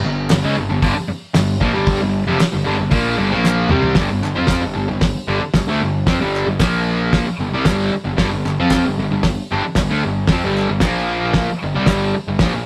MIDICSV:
0, 0, Header, 1, 6, 480
1, 0, Start_track
1, 0, Key_signature, -2, "minor"
1, 0, Tempo, 526316
1, 1713, Time_signature, 4, 2, 24, 8
1, 11545, End_track
2, 0, Start_track
2, 0, Title_t, "Distorted electric guitar"
2, 0, Program_c, 0, 30
2, 42, Note_on_c, 0, 43, 61
2, 50, Note_on_c, 0, 50, 74
2, 230, Note_off_c, 0, 43, 0
2, 234, Note_off_c, 0, 50, 0
2, 287, Note_on_c, 0, 50, 76
2, 289, Note_on_c, 0, 43, 65
2, 393, Note_off_c, 0, 50, 0
2, 397, Note_on_c, 0, 49, 90
2, 402, Note_off_c, 0, 43, 0
2, 402, Note_on_c, 0, 56, 94
2, 508, Note_off_c, 0, 49, 0
2, 511, Note_off_c, 0, 56, 0
2, 512, Note_on_c, 0, 43, 67
2, 518, Note_on_c, 0, 50, 75
2, 622, Note_off_c, 0, 43, 0
2, 623, Note_off_c, 0, 50, 0
2, 633, Note_on_c, 0, 43, 72
2, 633, Note_on_c, 0, 50, 77
2, 736, Note_off_c, 0, 43, 0
2, 740, Note_off_c, 0, 50, 0
2, 747, Note_on_c, 0, 43, 88
2, 751, Note_on_c, 0, 50, 97
2, 863, Note_off_c, 0, 43, 0
2, 865, Note_off_c, 0, 50, 0
2, 1221, Note_on_c, 0, 43, 71
2, 1223, Note_on_c, 0, 50, 68
2, 1419, Note_off_c, 0, 43, 0
2, 1420, Note_off_c, 0, 50, 0
2, 1462, Note_on_c, 0, 46, 102
2, 1479, Note_on_c, 0, 53, 117
2, 1577, Note_on_c, 0, 43, 94
2, 1580, Note_off_c, 0, 46, 0
2, 1586, Note_on_c, 0, 50, 101
2, 1588, Note_off_c, 0, 53, 0
2, 1598, Note_on_c, 0, 55, 98
2, 1817, Note_off_c, 0, 43, 0
2, 1822, Note_off_c, 0, 50, 0
2, 1828, Note_off_c, 0, 55, 0
2, 1834, Note_on_c, 0, 50, 64
2, 1835, Note_on_c, 0, 43, 65
2, 2025, Note_off_c, 0, 50, 0
2, 2026, Note_off_c, 0, 43, 0
2, 2073, Note_on_c, 0, 41, 93
2, 2075, Note_on_c, 0, 48, 108
2, 2178, Note_off_c, 0, 41, 0
2, 2186, Note_off_c, 0, 48, 0
2, 2304, Note_on_c, 0, 50, 69
2, 2307, Note_on_c, 0, 43, 65
2, 2405, Note_off_c, 0, 43, 0
2, 2416, Note_on_c, 0, 43, 81
2, 2419, Note_off_c, 0, 50, 0
2, 2430, Note_on_c, 0, 50, 90
2, 2531, Note_off_c, 0, 43, 0
2, 2532, Note_off_c, 0, 50, 0
2, 2542, Note_on_c, 0, 43, 67
2, 2543, Note_on_c, 0, 50, 74
2, 2653, Note_off_c, 0, 50, 0
2, 2657, Note_on_c, 0, 46, 83
2, 2659, Note_on_c, 0, 53, 87
2, 2667, Note_off_c, 0, 43, 0
2, 2667, Note_on_c, 0, 58, 90
2, 2896, Note_on_c, 0, 43, 91
2, 2897, Note_off_c, 0, 46, 0
2, 2898, Note_off_c, 0, 53, 0
2, 2902, Note_off_c, 0, 58, 0
2, 2903, Note_on_c, 0, 50, 101
2, 3014, Note_off_c, 0, 50, 0
2, 3016, Note_off_c, 0, 43, 0
2, 3018, Note_on_c, 0, 46, 86
2, 3023, Note_on_c, 0, 53, 96
2, 3033, Note_on_c, 0, 58, 88
2, 3374, Note_off_c, 0, 46, 0
2, 3378, Note_on_c, 0, 48, 94
2, 3380, Note_off_c, 0, 53, 0
2, 3382, Note_off_c, 0, 58, 0
2, 3384, Note_on_c, 0, 55, 93
2, 3386, Note_on_c, 0, 60, 111
2, 3610, Note_on_c, 0, 43, 83
2, 3616, Note_off_c, 0, 48, 0
2, 3620, Note_off_c, 0, 55, 0
2, 3620, Note_on_c, 0, 50, 84
2, 3621, Note_off_c, 0, 60, 0
2, 3730, Note_off_c, 0, 43, 0
2, 3731, Note_off_c, 0, 50, 0
2, 3741, Note_on_c, 0, 43, 57
2, 3742, Note_on_c, 0, 50, 60
2, 3846, Note_off_c, 0, 43, 0
2, 3846, Note_off_c, 0, 50, 0
2, 3856, Note_on_c, 0, 50, 64
2, 3857, Note_on_c, 0, 43, 58
2, 3967, Note_off_c, 0, 50, 0
2, 3971, Note_on_c, 0, 53, 91
2, 3978, Note_on_c, 0, 60, 92
2, 3984, Note_off_c, 0, 43, 0
2, 3986, Note_on_c, 0, 65, 98
2, 4210, Note_off_c, 0, 53, 0
2, 4213, Note_on_c, 0, 43, 60
2, 4213, Note_on_c, 0, 50, 63
2, 4217, Note_off_c, 0, 60, 0
2, 4221, Note_off_c, 0, 65, 0
2, 4311, Note_off_c, 0, 43, 0
2, 4320, Note_off_c, 0, 50, 0
2, 4322, Note_on_c, 0, 43, 57
2, 4331, Note_on_c, 0, 50, 66
2, 4442, Note_off_c, 0, 43, 0
2, 4443, Note_off_c, 0, 50, 0
2, 4453, Note_on_c, 0, 43, 60
2, 4454, Note_on_c, 0, 50, 74
2, 4654, Note_off_c, 0, 43, 0
2, 4655, Note_off_c, 0, 50, 0
2, 4811, Note_on_c, 0, 43, 84
2, 4818, Note_on_c, 0, 50, 94
2, 4919, Note_off_c, 0, 43, 0
2, 4938, Note_off_c, 0, 50, 0
2, 5052, Note_on_c, 0, 43, 64
2, 5058, Note_on_c, 0, 50, 63
2, 5168, Note_off_c, 0, 50, 0
2, 5179, Note_on_c, 0, 50, 87
2, 5182, Note_off_c, 0, 43, 0
2, 5189, Note_on_c, 0, 57, 108
2, 5295, Note_off_c, 0, 50, 0
2, 5299, Note_on_c, 0, 43, 68
2, 5303, Note_off_c, 0, 57, 0
2, 5305, Note_on_c, 0, 50, 71
2, 5497, Note_off_c, 0, 43, 0
2, 5500, Note_off_c, 0, 50, 0
2, 5531, Note_on_c, 0, 53, 87
2, 5541, Note_on_c, 0, 60, 103
2, 5652, Note_on_c, 0, 43, 70
2, 5654, Note_off_c, 0, 53, 0
2, 5657, Note_on_c, 0, 50, 97
2, 5659, Note_off_c, 0, 60, 0
2, 5664, Note_on_c, 0, 55, 94
2, 5887, Note_off_c, 0, 43, 0
2, 5891, Note_off_c, 0, 50, 0
2, 5898, Note_on_c, 0, 43, 56
2, 5900, Note_off_c, 0, 55, 0
2, 5902, Note_on_c, 0, 50, 67
2, 6015, Note_off_c, 0, 50, 0
2, 6018, Note_on_c, 0, 46, 92
2, 6025, Note_off_c, 0, 43, 0
2, 6025, Note_on_c, 0, 53, 90
2, 6027, Note_on_c, 0, 58, 92
2, 6618, Note_off_c, 0, 46, 0
2, 6622, Note_off_c, 0, 53, 0
2, 6622, Note_off_c, 0, 58, 0
2, 6746, Note_on_c, 0, 43, 57
2, 6746, Note_on_c, 0, 50, 67
2, 6868, Note_off_c, 0, 50, 0
2, 6869, Note_off_c, 0, 43, 0
2, 6872, Note_on_c, 0, 48, 87
2, 6878, Note_on_c, 0, 55, 92
2, 6984, Note_off_c, 0, 55, 0
2, 6985, Note_off_c, 0, 48, 0
2, 6987, Note_on_c, 0, 43, 89
2, 6994, Note_on_c, 0, 50, 94
2, 6995, Note_on_c, 0, 55, 99
2, 7219, Note_off_c, 0, 43, 0
2, 7226, Note_off_c, 0, 50, 0
2, 7227, Note_off_c, 0, 55, 0
2, 7336, Note_on_c, 0, 43, 59
2, 7342, Note_on_c, 0, 50, 70
2, 7441, Note_off_c, 0, 43, 0
2, 7451, Note_on_c, 0, 43, 88
2, 7454, Note_off_c, 0, 50, 0
2, 7465, Note_on_c, 0, 50, 98
2, 7573, Note_off_c, 0, 43, 0
2, 7573, Note_off_c, 0, 50, 0
2, 7583, Note_on_c, 0, 43, 72
2, 7584, Note_on_c, 0, 50, 73
2, 7697, Note_off_c, 0, 43, 0
2, 7698, Note_off_c, 0, 50, 0
2, 7708, Note_on_c, 0, 43, 70
2, 7709, Note_on_c, 0, 50, 67
2, 7831, Note_off_c, 0, 43, 0
2, 7831, Note_off_c, 0, 50, 0
2, 7839, Note_on_c, 0, 53, 86
2, 7841, Note_on_c, 0, 60, 94
2, 7848, Note_on_c, 0, 65, 89
2, 8067, Note_off_c, 0, 53, 0
2, 8070, Note_off_c, 0, 60, 0
2, 8071, Note_on_c, 0, 50, 72
2, 8072, Note_on_c, 0, 43, 62
2, 8073, Note_off_c, 0, 65, 0
2, 8189, Note_off_c, 0, 43, 0
2, 8189, Note_off_c, 0, 50, 0
2, 8200, Note_on_c, 0, 43, 64
2, 8200, Note_on_c, 0, 50, 72
2, 8299, Note_off_c, 0, 50, 0
2, 8303, Note_off_c, 0, 43, 0
2, 8310, Note_on_c, 0, 50, 74
2, 8314, Note_on_c, 0, 43, 61
2, 8504, Note_off_c, 0, 50, 0
2, 8505, Note_off_c, 0, 43, 0
2, 8673, Note_on_c, 0, 43, 84
2, 8678, Note_on_c, 0, 50, 96
2, 8786, Note_off_c, 0, 43, 0
2, 8788, Note_off_c, 0, 50, 0
2, 8919, Note_on_c, 0, 43, 60
2, 8920, Note_on_c, 0, 50, 66
2, 9020, Note_off_c, 0, 50, 0
2, 9031, Note_on_c, 0, 50, 82
2, 9036, Note_off_c, 0, 43, 0
2, 9037, Note_on_c, 0, 57, 101
2, 9145, Note_off_c, 0, 50, 0
2, 9148, Note_off_c, 0, 57, 0
2, 9156, Note_on_c, 0, 43, 65
2, 9161, Note_on_c, 0, 50, 66
2, 9346, Note_off_c, 0, 43, 0
2, 9349, Note_off_c, 0, 50, 0
2, 9396, Note_on_c, 0, 53, 96
2, 9404, Note_on_c, 0, 60, 90
2, 9507, Note_off_c, 0, 53, 0
2, 9511, Note_off_c, 0, 60, 0
2, 9515, Note_on_c, 0, 43, 86
2, 9528, Note_on_c, 0, 50, 102
2, 9529, Note_on_c, 0, 55, 90
2, 9747, Note_off_c, 0, 43, 0
2, 9750, Note_off_c, 0, 50, 0
2, 9754, Note_off_c, 0, 55, 0
2, 9756, Note_on_c, 0, 43, 63
2, 9761, Note_on_c, 0, 50, 74
2, 9867, Note_off_c, 0, 50, 0
2, 9871, Note_on_c, 0, 46, 97
2, 9875, Note_off_c, 0, 43, 0
2, 9884, Note_on_c, 0, 53, 89
2, 9886, Note_on_c, 0, 58, 107
2, 10465, Note_off_c, 0, 46, 0
2, 10471, Note_off_c, 0, 53, 0
2, 10472, Note_off_c, 0, 58, 0
2, 10606, Note_on_c, 0, 43, 69
2, 10610, Note_on_c, 0, 50, 68
2, 10715, Note_off_c, 0, 50, 0
2, 10719, Note_off_c, 0, 43, 0
2, 10719, Note_on_c, 0, 48, 86
2, 10725, Note_on_c, 0, 55, 94
2, 10825, Note_on_c, 0, 43, 84
2, 10828, Note_off_c, 0, 55, 0
2, 10829, Note_off_c, 0, 48, 0
2, 10834, Note_on_c, 0, 50, 88
2, 10839, Note_on_c, 0, 55, 104
2, 11062, Note_off_c, 0, 43, 0
2, 11066, Note_off_c, 0, 50, 0
2, 11069, Note_off_c, 0, 55, 0
2, 11202, Note_on_c, 0, 43, 65
2, 11206, Note_on_c, 0, 50, 68
2, 11317, Note_off_c, 0, 43, 0
2, 11319, Note_off_c, 0, 50, 0
2, 11327, Note_on_c, 0, 46, 79
2, 11334, Note_on_c, 0, 53, 98
2, 11425, Note_off_c, 0, 46, 0
2, 11430, Note_off_c, 0, 53, 0
2, 11436, Note_on_c, 0, 46, 59
2, 11441, Note_on_c, 0, 53, 70
2, 11545, Note_off_c, 0, 46, 0
2, 11545, Note_off_c, 0, 53, 0
2, 11545, End_track
3, 0, Start_track
3, 0, Title_t, "Picked electric bass"
3, 0, Program_c, 1, 34
3, 38, Note_on_c, 1, 31, 81
3, 259, Note_off_c, 1, 31, 0
3, 282, Note_on_c, 1, 31, 94
3, 390, Note_off_c, 1, 31, 0
3, 400, Note_on_c, 1, 37, 119
3, 509, Note_off_c, 1, 37, 0
3, 529, Note_on_c, 1, 31, 79
3, 634, Note_off_c, 1, 31, 0
3, 653, Note_on_c, 1, 31, 89
3, 742, Note_off_c, 1, 31, 0
3, 748, Note_on_c, 1, 31, 98
3, 862, Note_off_c, 1, 31, 0
3, 1242, Note_on_c, 1, 31, 79
3, 1461, Note_off_c, 1, 31, 0
3, 1470, Note_on_c, 1, 34, 91
3, 1583, Note_off_c, 1, 34, 0
3, 1610, Note_on_c, 1, 31, 87
3, 1825, Note_off_c, 1, 31, 0
3, 1847, Note_on_c, 1, 31, 80
3, 2063, Note_off_c, 1, 31, 0
3, 2068, Note_on_c, 1, 29, 100
3, 2181, Note_off_c, 1, 29, 0
3, 2317, Note_on_c, 1, 31, 89
3, 2426, Note_off_c, 1, 31, 0
3, 2434, Note_on_c, 1, 31, 98
3, 2544, Note_off_c, 1, 31, 0
3, 2558, Note_on_c, 1, 31, 89
3, 2654, Note_off_c, 1, 31, 0
3, 2660, Note_on_c, 1, 34, 98
3, 2888, Note_off_c, 1, 34, 0
3, 2906, Note_on_c, 1, 31, 90
3, 3020, Note_off_c, 1, 31, 0
3, 3037, Note_on_c, 1, 34, 101
3, 3369, Note_off_c, 1, 34, 0
3, 3379, Note_on_c, 1, 36, 93
3, 3607, Note_off_c, 1, 36, 0
3, 3612, Note_on_c, 1, 31, 87
3, 3732, Note_off_c, 1, 31, 0
3, 3741, Note_on_c, 1, 31, 78
3, 3857, Note_off_c, 1, 31, 0
3, 3863, Note_on_c, 1, 31, 83
3, 3978, Note_off_c, 1, 31, 0
3, 3997, Note_on_c, 1, 41, 97
3, 4212, Note_off_c, 1, 41, 0
3, 4218, Note_on_c, 1, 31, 91
3, 4335, Note_off_c, 1, 31, 0
3, 4342, Note_on_c, 1, 31, 70
3, 4458, Note_off_c, 1, 31, 0
3, 4469, Note_on_c, 1, 31, 77
3, 4693, Note_off_c, 1, 31, 0
3, 4813, Note_on_c, 1, 31, 83
3, 4933, Note_off_c, 1, 31, 0
3, 5049, Note_on_c, 1, 31, 69
3, 5164, Note_off_c, 1, 31, 0
3, 5170, Note_on_c, 1, 38, 93
3, 5291, Note_off_c, 1, 38, 0
3, 5301, Note_on_c, 1, 31, 81
3, 5529, Note_off_c, 1, 31, 0
3, 5537, Note_on_c, 1, 41, 100
3, 5643, Note_off_c, 1, 41, 0
3, 5649, Note_on_c, 1, 31, 84
3, 5883, Note_off_c, 1, 31, 0
3, 5892, Note_on_c, 1, 31, 81
3, 6013, Note_off_c, 1, 31, 0
3, 6017, Note_on_c, 1, 34, 97
3, 6588, Note_off_c, 1, 34, 0
3, 6734, Note_on_c, 1, 31, 76
3, 6854, Note_off_c, 1, 31, 0
3, 6859, Note_on_c, 1, 36, 98
3, 6977, Note_off_c, 1, 36, 0
3, 6981, Note_on_c, 1, 31, 81
3, 7209, Note_off_c, 1, 31, 0
3, 7343, Note_on_c, 1, 31, 79
3, 7459, Note_off_c, 1, 31, 0
3, 7464, Note_on_c, 1, 31, 91
3, 7579, Note_off_c, 1, 31, 0
3, 7596, Note_on_c, 1, 31, 86
3, 7706, Note_off_c, 1, 31, 0
3, 7711, Note_on_c, 1, 31, 83
3, 7823, Note_off_c, 1, 31, 0
3, 7842, Note_on_c, 1, 41, 100
3, 8061, Note_off_c, 1, 41, 0
3, 8078, Note_on_c, 1, 31, 91
3, 8180, Note_off_c, 1, 31, 0
3, 8186, Note_on_c, 1, 31, 77
3, 8301, Note_off_c, 1, 31, 0
3, 8310, Note_on_c, 1, 31, 80
3, 8535, Note_off_c, 1, 31, 0
3, 8679, Note_on_c, 1, 31, 89
3, 8785, Note_off_c, 1, 31, 0
3, 8906, Note_on_c, 1, 31, 82
3, 9021, Note_off_c, 1, 31, 0
3, 9035, Note_on_c, 1, 38, 92
3, 9146, Note_off_c, 1, 38, 0
3, 9163, Note_on_c, 1, 31, 76
3, 9375, Note_off_c, 1, 31, 0
3, 9380, Note_on_c, 1, 41, 90
3, 9498, Note_off_c, 1, 41, 0
3, 9529, Note_on_c, 1, 31, 95
3, 9743, Note_off_c, 1, 31, 0
3, 9748, Note_on_c, 1, 31, 77
3, 9853, Note_off_c, 1, 31, 0
3, 9858, Note_on_c, 1, 34, 102
3, 10429, Note_off_c, 1, 34, 0
3, 10613, Note_on_c, 1, 31, 74
3, 10715, Note_off_c, 1, 31, 0
3, 10725, Note_on_c, 1, 36, 95
3, 10823, Note_off_c, 1, 36, 0
3, 10829, Note_on_c, 1, 31, 88
3, 11054, Note_off_c, 1, 31, 0
3, 11195, Note_on_c, 1, 31, 75
3, 11299, Note_off_c, 1, 31, 0
3, 11305, Note_on_c, 1, 34, 90
3, 11420, Note_off_c, 1, 34, 0
3, 11435, Note_on_c, 1, 34, 75
3, 11545, Note_off_c, 1, 34, 0
3, 11545, End_track
4, 0, Start_track
4, 0, Title_t, "Muted distorted electric guitar strokes"
4, 872, Note_on_c, 9, 29, 58
4, 963, Note_off_c, 9, 29, 0
4, 987, Note_on_c, 9, 29, 58
4, 1078, Note_off_c, 9, 29, 0
4, 2182, Note_on_c, 9, 29, 57
4, 2273, Note_off_c, 9, 29, 0
4, 4930, Note_on_c, 9, 29, 54
4, 5022, Note_off_c, 9, 29, 0
4, 6625, Note_on_c, 9, 29, 53
4, 6716, Note_off_c, 9, 29, 0
4, 7230, Note_on_c, 9, 29, 61
4, 7321, Note_off_c, 9, 29, 0
4, 8797, Note_on_c, 9, 29, 59
4, 8889, Note_off_c, 9, 29, 0
4, 10478, Note_on_c, 9, 29, 52
4, 10569, Note_off_c, 9, 29, 0
4, 11082, Note_on_c, 9, 29, 58
4, 11173, Note_off_c, 9, 29, 0
4, 11545, End_track
5, 0, Start_track
5, 0, Title_t, "Muted picked electric bass strokes"
5, 872, Note_on_c, 9, 29, 41
5, 964, Note_off_c, 9, 29, 0
5, 1004, Note_on_c, 9, 29, 41
5, 1095, Note_off_c, 9, 29, 0
5, 2203, Note_on_c, 9, 29, 43
5, 2294, Note_off_c, 9, 29, 0
5, 4947, Note_on_c, 9, 29, 38
5, 5038, Note_off_c, 9, 29, 0
5, 6606, Note_on_c, 9, 29, 39
5, 6697, Note_off_c, 9, 29, 0
5, 7227, Note_on_c, 9, 29, 39
5, 7318, Note_off_c, 9, 29, 0
5, 8790, Note_on_c, 9, 29, 41
5, 8882, Note_off_c, 9, 29, 0
5, 10482, Note_on_c, 9, 29, 38
5, 10573, Note_off_c, 9, 29, 0
5, 11097, Note_on_c, 9, 29, 36
5, 11188, Note_off_c, 9, 29, 0
5, 11545, End_track
6, 0, Start_track
6, 0, Title_t, "Drums"
6, 275, Note_on_c, 9, 38, 121
6, 275, Note_on_c, 9, 46, 67
6, 276, Note_on_c, 9, 39, 93
6, 367, Note_off_c, 9, 38, 0
6, 367, Note_off_c, 9, 39, 0
6, 367, Note_off_c, 9, 46, 0
6, 752, Note_on_c, 9, 36, 110
6, 754, Note_on_c, 9, 46, 62
6, 843, Note_off_c, 9, 36, 0
6, 845, Note_off_c, 9, 46, 0
6, 1226, Note_on_c, 9, 38, 108
6, 1226, Note_on_c, 9, 46, 62
6, 1243, Note_on_c, 9, 39, 92
6, 1318, Note_off_c, 9, 38, 0
6, 1318, Note_off_c, 9, 46, 0
6, 1334, Note_off_c, 9, 39, 0
6, 1469, Note_on_c, 9, 36, 92
6, 1560, Note_off_c, 9, 36, 0
6, 1702, Note_on_c, 9, 46, 73
6, 1706, Note_on_c, 9, 36, 109
6, 1793, Note_off_c, 9, 46, 0
6, 1797, Note_off_c, 9, 36, 0
6, 2192, Note_on_c, 9, 38, 127
6, 2192, Note_on_c, 9, 46, 65
6, 2197, Note_on_c, 9, 39, 92
6, 2283, Note_off_c, 9, 38, 0
6, 2283, Note_off_c, 9, 46, 0
6, 2288, Note_off_c, 9, 39, 0
6, 2655, Note_on_c, 9, 46, 66
6, 2660, Note_on_c, 9, 36, 113
6, 2746, Note_off_c, 9, 46, 0
6, 2751, Note_off_c, 9, 36, 0
6, 3139, Note_on_c, 9, 38, 68
6, 3156, Note_on_c, 9, 39, 91
6, 3230, Note_off_c, 9, 38, 0
6, 3247, Note_off_c, 9, 39, 0
6, 3368, Note_on_c, 9, 45, 97
6, 3459, Note_off_c, 9, 45, 0
6, 3491, Note_on_c, 9, 43, 90
6, 3582, Note_off_c, 9, 43, 0
6, 3602, Note_on_c, 9, 38, 118
6, 3602, Note_on_c, 9, 46, 58
6, 3609, Note_on_c, 9, 36, 114
6, 3694, Note_off_c, 9, 38, 0
6, 3694, Note_off_c, 9, 46, 0
6, 3700, Note_off_c, 9, 36, 0
6, 3868, Note_on_c, 9, 39, 74
6, 3959, Note_off_c, 9, 39, 0
6, 4077, Note_on_c, 9, 38, 104
6, 4077, Note_on_c, 9, 46, 57
6, 4090, Note_on_c, 9, 36, 113
6, 4115, Note_on_c, 9, 39, 102
6, 4168, Note_off_c, 9, 38, 0
6, 4168, Note_off_c, 9, 46, 0
6, 4181, Note_off_c, 9, 36, 0
6, 4207, Note_off_c, 9, 39, 0
6, 4570, Note_on_c, 9, 38, 101
6, 4570, Note_on_c, 9, 46, 61
6, 4574, Note_on_c, 9, 36, 109
6, 4662, Note_off_c, 9, 38, 0
6, 4662, Note_off_c, 9, 46, 0
6, 4665, Note_off_c, 9, 36, 0
6, 5049, Note_on_c, 9, 38, 103
6, 5049, Note_on_c, 9, 46, 57
6, 5053, Note_on_c, 9, 36, 111
6, 5077, Note_on_c, 9, 39, 80
6, 5140, Note_off_c, 9, 38, 0
6, 5140, Note_off_c, 9, 46, 0
6, 5144, Note_off_c, 9, 36, 0
6, 5169, Note_off_c, 9, 39, 0
6, 5534, Note_on_c, 9, 38, 108
6, 5534, Note_on_c, 9, 46, 61
6, 5535, Note_on_c, 9, 36, 115
6, 5625, Note_off_c, 9, 38, 0
6, 5625, Note_off_c, 9, 46, 0
6, 5626, Note_off_c, 9, 36, 0
6, 5801, Note_on_c, 9, 39, 62
6, 5892, Note_off_c, 9, 39, 0
6, 6015, Note_on_c, 9, 38, 106
6, 6015, Note_on_c, 9, 46, 56
6, 6018, Note_on_c, 9, 36, 109
6, 6028, Note_on_c, 9, 39, 100
6, 6106, Note_off_c, 9, 38, 0
6, 6106, Note_off_c, 9, 46, 0
6, 6109, Note_off_c, 9, 36, 0
6, 6120, Note_off_c, 9, 39, 0
6, 6502, Note_on_c, 9, 36, 104
6, 6502, Note_on_c, 9, 38, 108
6, 6502, Note_on_c, 9, 46, 56
6, 6593, Note_off_c, 9, 36, 0
6, 6593, Note_off_c, 9, 38, 0
6, 6593, Note_off_c, 9, 46, 0
6, 6978, Note_on_c, 9, 38, 116
6, 6978, Note_on_c, 9, 46, 57
6, 6982, Note_on_c, 9, 36, 108
6, 6994, Note_on_c, 9, 39, 94
6, 7069, Note_off_c, 9, 38, 0
6, 7069, Note_off_c, 9, 46, 0
6, 7073, Note_off_c, 9, 36, 0
6, 7086, Note_off_c, 9, 39, 0
6, 7462, Note_on_c, 9, 38, 109
6, 7462, Note_on_c, 9, 46, 52
6, 7463, Note_on_c, 9, 36, 111
6, 7553, Note_off_c, 9, 38, 0
6, 7553, Note_off_c, 9, 46, 0
6, 7554, Note_off_c, 9, 36, 0
6, 7719, Note_on_c, 9, 39, 70
6, 7810, Note_off_c, 9, 39, 0
6, 7941, Note_on_c, 9, 38, 112
6, 7941, Note_on_c, 9, 46, 55
6, 7942, Note_on_c, 9, 36, 103
6, 7946, Note_on_c, 9, 39, 105
6, 8032, Note_off_c, 9, 38, 0
6, 8032, Note_off_c, 9, 46, 0
6, 8033, Note_off_c, 9, 36, 0
6, 8037, Note_off_c, 9, 39, 0
6, 8419, Note_on_c, 9, 38, 104
6, 8419, Note_on_c, 9, 46, 62
6, 8422, Note_on_c, 9, 36, 110
6, 8510, Note_off_c, 9, 38, 0
6, 8510, Note_off_c, 9, 46, 0
6, 8513, Note_off_c, 9, 36, 0
6, 8893, Note_on_c, 9, 38, 98
6, 8893, Note_on_c, 9, 46, 61
6, 8901, Note_on_c, 9, 36, 105
6, 8915, Note_on_c, 9, 39, 92
6, 8985, Note_off_c, 9, 38, 0
6, 8985, Note_off_c, 9, 46, 0
6, 8993, Note_off_c, 9, 36, 0
6, 9006, Note_off_c, 9, 39, 0
6, 9371, Note_on_c, 9, 38, 116
6, 9371, Note_on_c, 9, 46, 59
6, 9381, Note_on_c, 9, 36, 126
6, 9462, Note_off_c, 9, 38, 0
6, 9462, Note_off_c, 9, 46, 0
6, 9472, Note_off_c, 9, 36, 0
6, 9646, Note_on_c, 9, 39, 68
6, 9738, Note_off_c, 9, 39, 0
6, 9852, Note_on_c, 9, 38, 106
6, 9852, Note_on_c, 9, 46, 57
6, 9860, Note_on_c, 9, 36, 100
6, 9873, Note_on_c, 9, 39, 95
6, 9943, Note_off_c, 9, 38, 0
6, 9943, Note_off_c, 9, 46, 0
6, 9952, Note_off_c, 9, 36, 0
6, 9964, Note_off_c, 9, 39, 0
6, 10338, Note_on_c, 9, 38, 109
6, 10338, Note_on_c, 9, 46, 53
6, 10343, Note_on_c, 9, 36, 108
6, 10429, Note_off_c, 9, 38, 0
6, 10429, Note_off_c, 9, 46, 0
6, 10434, Note_off_c, 9, 36, 0
6, 10818, Note_on_c, 9, 38, 99
6, 10818, Note_on_c, 9, 46, 56
6, 10824, Note_on_c, 9, 36, 97
6, 10840, Note_on_c, 9, 39, 90
6, 10910, Note_off_c, 9, 38, 0
6, 10910, Note_off_c, 9, 46, 0
6, 10915, Note_off_c, 9, 36, 0
6, 10932, Note_off_c, 9, 39, 0
6, 11301, Note_on_c, 9, 38, 124
6, 11301, Note_on_c, 9, 46, 57
6, 11307, Note_on_c, 9, 36, 113
6, 11392, Note_off_c, 9, 38, 0
6, 11392, Note_off_c, 9, 46, 0
6, 11399, Note_off_c, 9, 36, 0
6, 11545, End_track
0, 0, End_of_file